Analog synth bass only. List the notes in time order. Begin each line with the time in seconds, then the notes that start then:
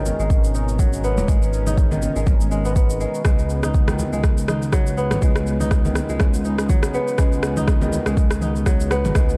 Already playing: G#1
0.19 G#1
1.18 D#1
1.28 G#1
2.16 G#1
3.25 C#2
4.13 C#2
5.11 G#1
5.22 C#2
6.09 C#2
7.19 C#2
8.06 C#2
9.04 G#1
9.15 C#2